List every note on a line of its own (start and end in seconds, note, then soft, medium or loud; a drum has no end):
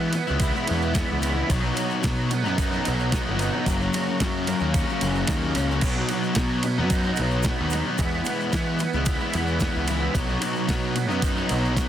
0.00 0.13 E3 loud
0.00 0.18 E3 loud
0.00 0.15 G#3 loud
0.00 0.14 B3 loud
0.00 0.14 E4 loud
0.00 1.47 E4 medium
0.00 1.46 B4 medium
0.00 1.46 G#5 medium
0.00 3.62 B5 medium
0.13 0.67 B3 medium
0.13 muted distorted electric guitar stroke medium
0.13 ride medium
0.13 shaker medium
0.27 0.50 C#2 medium
0.27 0.55 G#3 medium
0.27 0.54 B3 medium
0.27 0.52 E4 medium
0.27 shaker soft
0.40 1.22 E4 medium
0.40 kick loud
0.40 ride loud
0.40 shaker loud
0.53 0.67 G#3 medium
0.53 0.68 B3 medium
0.53 0.69 E4 medium
0.53 shaker soft
0.66 0.93 E3 medium
0.66 0.94 G#3 medium
0.66 0.95 B3 medium
0.66 0.96 E4 medium
0.66 ride medium
0.71 1.01 E2 loud
0.82 shaker soft
0.94 1.21 E3 loud
0.94 1.10 G#3 loud
0.94 1.09 B3 loud
0.94 1.07 E4 loud
0.94 kick loud
0.94 snare loud
0.94 ride loud
0.94 shaker loud
1.08 1.42 C#2 medium
1.08 1.21 G#3 medium
1.08 1.23 B3 medium
1.08 1.24 E4 medium
1.22 1.47 E3 medium
1.22 1.37 G#3 medium
1.22 1.35 B3 medium
1.22 1.33 E4 medium
1.22 ride medium
1.22 shaker medium
1.34 1.49 G#3 medium
1.34 1.48 B3 medium
1.34 1.47 E4 medium
1.48 1.71 B1 loud
1.48 1.73 B2 loud
1.48 1.63 F#3 loud
1.48 1.61 B3 loud
1.48 3.65 D#4 medium
1.48 1.59 D#4 loud
1.48 3.65 G#4 medium
1.48 3.65 F#5 medium
1.48 kick loud
1.48 ride loud
1.48 shaker medium
1.60 1.75 F#3 medium
1.60 1.75 B3 medium
1.60 1.76 D#4 medium
1.74 2.00 B2 medium
1.74 2.02 F#3 medium
1.74 2.03 B3 medium
1.74 2.04 D#4 loud
1.74 ride medium
1.74 shaker medium
1.90 shaker soft
2.02 2.29 B2 medium
2.02 2.47 B2 medium
2.02 2.31 F#3 loud
2.02 2.30 B3 loud
2.02 2.30 D#4 loud
2.02 kick loud
2.02 snare loud
2.02 ride loud
2.02 shaker medium
2.31 3.11 B3 medium
2.31 muted distorted electric guitar stroke soft
2.31 ride medium
2.31 shaker medium
2.44 2.78 F#2 medium
2.44 2.72 B3 medium
2.44 2.70 D#4 medium
2.44 shaker soft
2.48 2.74 F#3 medium
2.58 3.39 D#4 medium
2.58 kick loud
2.58 ride loud
2.58 shaker loud
2.71 2.87 F#3 medium
2.71 2.87 B3 medium
2.71 2.88 D#4 medium
2.71 shaker soft
2.85 3.19 B1 loud
2.85 3.10 B2 medium
2.85 3.12 F#3 medium
2.85 3.13 B3 medium
2.85 3.14 D#4 medium
2.85 ride medium
2.85 shaker medium
2.99 shaker soft
3.12 3.38 B2 medium
3.12 3.29 F#3 loud
3.12 3.27 B3 loud
3.12 3.25 D#4 loud
3.12 kick loud
3.12 snare loud
3.12 ride loud
3.12 shaker loud
3.26 3.49 G1 loud
3.26 3.41 F#3 medium
3.26 3.41 B3 medium
3.26 3.42 D#4 medium
3.39 3.65 B2 medium
3.39 3.56 F#3 medium
3.39 3.54 B3 medium
3.39 3.52 D#4 medium
3.39 ride medium
3.39 shaker medium
3.53 3.69 F#3 medium
3.53 3.66 B3 medium
3.53 3.65 D#4 medium
3.66 3.88 F#1 loud
3.66 4.08 F#2 loud
3.66 3.93 C#3 loud
3.66 3.83 F#3 loud
3.66 3.81 A#3 loud
3.66 5.82 C#4 medium
3.66 3.79 C#4 loud
3.66 5.82 A#4 medium
3.66 7.96 F#5 medium
3.66 5.82 A#5 medium
3.66 kick loud
3.66 ride loud
3.66 shaker loud
3.81 3.96 F#3 medium
3.81 3.96 A#3 medium
3.81 3.97 C#4 medium
3.81 shaker soft
3.93 4.21 C#3 medium
3.93 4.23 F#3 medium
3.93 4.22 A#3 medium
3.93 ride medium
3.93 shaker medium
3.98 4.23 C#4 medium
4.20 4.53 F#2 loud
4.20 4.75 F#2 loud
4.20 4.47 C#3 loud
4.20 4.48 F#3 loud
4.20 4.47 A#3 medium
4.20 4.47 C#4 loud
4.20 kick loud
4.20 snare loud
4.20 ride loud
4.20 shaker medium
4.47 5.28 A#3 medium
4.47 muted distorted electric guitar stroke soft
4.47 ride medium
4.47 shaker medium
4.60 4.83 D#2 medium
4.60 4.89 A#3 medium
4.60 4.87 C#4 medium
4.60 shaker soft
4.64 4.90 F#3 medium
4.74 5.55 C#4 medium
4.74 kick loud
4.74 ride loud
4.74 shaker loud
4.88 5.01 F#3 medium
4.88 5.02 A#3 medium
4.88 5.03 C#4 medium
4.88 shaker soft
5.01 5.23 F#1 medium
5.01 5.29 C#3 medium
5.01 5.29 F#3 medium
5.01 5.30 A#3 medium
5.01 5.31 C#4 medium
5.01 ride medium
5.01 shaker medium
5.15 shaker soft
5.27 5.53 D#2 loud
5.27 5.70 F#2 loud
5.27 5.56 C#3 medium
5.27 5.44 F#3 loud
5.27 5.43 A#3 loud
5.27 kick loud
5.27 snare loud
5.27 ride loud
5.27 shaker loud
5.32 5.41 C#4 loud
5.42 5.56 F#3 medium
5.42 5.58 A#3 medium
5.42 5.59 C#4 medium
5.55 5.80 C#2 medium
5.55 5.82 C#3 medium
5.55 5.72 F#3 medium
5.55 5.83 C#4 medium
5.55 snare soft
5.55 ride medium
5.55 shaker medium
5.59 5.71 A#3 medium
5.59 5.69 C#4 medium
5.70 5.83 F#3 medium
5.70 5.83 A#3 medium
5.70 5.82 C#4 medium
5.70 shaker soft
5.81 6.04 B1 medium
5.81 6.10 B2 loud
5.81 5.99 F#3 loud
5.81 7.97 D#4 medium
5.81 7.97 G#4 medium
5.81 11.89 B5 medium
5.81 kick loud
5.81 crash loud
5.81 shaker loud
5.86 5.98 B3 loud
5.86 5.95 D#4 loud
5.96 6.13 B3 medium
5.96 6.13 D#4 medium
6.00 6.11 F#3 medium
6.09 6.36 B2 medium
6.09 6.37 F#3 medium
6.09 ride medium
6.09 shaker medium
6.14 6.39 B3 medium
6.14 6.39 D#4 medium
6.23 shaker soft
6.35 6.80 B2 medium
6.35 6.63 B2 medium
6.35 6.64 F#3 medium
6.35 kick loud
6.35 snare loud
6.35 ride loud
6.35 shaker medium
6.40 6.65 B3 loud
6.40 6.64 D#4 loud
6.63 7.45 B3 medium
6.63 muted distorted electric guitar stroke soft
6.63 ride medium
6.63 shaker medium
6.78 7.10 F#2 medium
6.78 7.07 F#3 medium
6.78 7.07 B3 medium
6.78 7.05 D#4 medium
6.90 7.72 D#4 medium
6.90 kick loud
6.90 ride loud
6.90 shaker loud
7.03 7.22 D#4 medium
7.03 shaker soft
7.08 7.20 F#3 medium
7.08 7.22 B3 medium
7.16 7.51 B1 medium
7.16 7.45 B2 medium
7.16 ride medium
7.16 shaker medium
7.21 7.46 F#3 medium
7.21 7.47 B3 medium
7.21 7.48 D#4 medium
7.31 shaker soft
7.43 7.71 B2 medium
7.43 kick loud
7.43 snare loud
7.43 ride loud
7.43 shaker loud
7.47 7.61 F#3 loud
7.47 7.61 B3 loud
7.47 7.58 D#4 loud
7.59 7.81 D#2 medium
7.59 7.73 F#3 medium
7.59 7.75 B3 medium
7.59 7.75 D#4 medium
7.70 7.98 B2 medium
7.70 7.88 F#3 medium
7.70 ride medium
7.70 shaker loud
7.74 7.88 B3 medium
7.74 7.85 D#4 medium
7.74 snare soft
7.87 8.00 F#3 medium
7.87 8.02 B3 medium
7.87 7.98 D#4 medium
7.98 8.21 E2 loud
7.98 8.26 E3 loud
7.98 8.16 G#3 loud
7.98 10.13 E4 medium
7.98 10.14 B4 medium
7.98 10.14 G#5 medium
7.98 kick loud
7.98 ride loud
7.98 shaker loud
8.02 8.14 B3 loud
8.02 8.11 E4 loud
8.13 8.29 B3 medium
8.13 8.29 E4 medium
8.17 8.28 G#3 medium
8.25 8.52 E3 medium
8.25 8.54 G#3 medium
8.25 ride medium
8.25 shaker medium
8.29 8.55 B3 medium
8.29 8.55 E4 medium
8.40 shaker soft
8.53 8.80 E3 medium
8.53 8.85 E3 loud
8.53 8.82 G#3 loud
8.53 8.82 B3 medium
8.53 8.81 E4 loud
8.53 kick loud
8.53 snare loud
8.53 ride loud
8.53 shaker medium
8.79 9.33 B3 medium
8.79 muted distorted electric guitar stroke medium
8.79 ride medium
8.79 shaker medium
8.93 9.15 C#2 medium
8.93 9.22 B3 medium
8.93 9.20 E4 medium
8.93 shaker soft
8.97 9.23 G#3 medium
9.06 9.88 E4 medium
9.06 kick loud
9.06 ride loud
9.06 shaker loud
9.20 9.35 B3 medium
9.20 9.37 E4 medium
9.20 shaker soft
9.25 9.35 G#3 medium
9.33 9.66 E2 loud
9.33 9.60 E3 medium
9.33 9.62 G#3 medium
9.33 9.62 B3 loud
9.33 ride medium
9.33 shaker medium
9.38 9.63 E4 medium
9.47 shaker soft
9.60 9.87 E3 loud
9.60 9.77 G#3 loud
9.60 9.75 B3 loud
9.60 kick loud
9.60 snare loud
9.60 ride loud
9.60 shaker loud
9.64 9.73 E4 loud
9.74 10.07 C#2 medium
9.74 9.89 G#3 medium
9.74 9.90 B3 medium
9.74 9.91 E4 medium
9.87 10.14 E3 medium
9.87 10.03 G#3 medium
9.87 10.01 B3 medium
9.87 snare soft
9.87 ride medium
9.87 shaker medium
9.92 9.99 E4 medium
10.00 10.15 G#3 medium
10.00 10.14 B3 medium
10.00 10.13 E4 medium
10.14 10.37 B1 medium
10.14 10.39 B2 loud
10.14 10.31 F#3 loud
10.14 10.28 B3 loud
10.14 11.89 D#4 medium
10.14 10.26 D#4 loud
10.14 11.89 G#4 medium
10.14 11.89 F#5 medium
10.14 kick loud
10.14 ride loud
10.14 shaker loud
10.27 10.41 F#3 medium
10.27 10.42 B3 medium
10.27 10.42 D#4 medium
10.41 10.66 B2 medium
10.41 10.68 F#3 medium
10.41 10.69 B3 loud
10.41 10.70 D#4 medium
10.41 ride loud
10.41 shaker medium
10.56 shaker soft
10.67 10.95 B2 loud
10.67 11.10 B2 loud
10.67 10.96 F#3 medium
10.67 10.95 B3 loud
10.67 10.96 D#4 loud
10.67 kick loud
10.67 snare loud
10.67 ride loud
10.67 shaker medium
10.96 11.75 B3 medium
10.96 muted distorted electric guitar stroke medium
10.96 ride medium
10.96 shaker medium
11.08 11.42 F#2 medium
11.08 11.38 F#3 medium
11.08 11.36 B3 medium
11.08 11.34 D#4 medium
11.08 shaker soft
11.22 11.89 D#4 medium
11.22 kick loud
11.22 ride loud
11.22 shaker loud
11.35 11.50 F#3 medium
11.35 11.50 B3 medium
11.35 11.51 D#4 medium
11.35 shaker soft
11.49 11.83 B1 loud
11.49 11.75 B2 medium
11.49 11.77 F#3 medium
11.49 11.78 B3 medium
11.49 11.79 D#4 medium
11.49 ride medium
11.49 shaker medium
11.65 shaker soft
11.76 11.89 B2 loud
11.76 11.89 F#3 loud
11.76 11.89 B3 loud
11.76 11.88 D#4 loud
11.76 kick loud
11.76 snare loud
11.76 ride loud
11.76 shaker loud